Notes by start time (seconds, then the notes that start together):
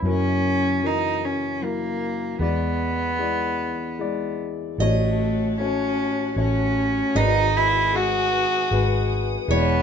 0.03 F#1 F#2 F#3 E4 A#4
0.07 C#4
0.82 E3 F#3 D#4 A#4
1.25 C#4
1.62 F#3 A#3 E4 A#4
2.39 E2 E3 G#3 B3 E4 D5
3.19 G#3 E4 D5
3.99 G#3 E4 D5
4.78 A1 A2 A3 F#4 C#5 D#5 F#5 A5
5.59 A3 C#4 F#4 C#5
6.36 A1 A3 C#4 F#4 C#5
7.15 G#1 G#2 G#3 D#4 F#4 B4 D#5 G#5 D#6
7.56 E4
7.93 G#3 F#4 G#4
8.71 G#1 G#3 F#4 B4
9.48 E1 E2 E3 G#3 B3 E4 C#5 E5 G#5 C#6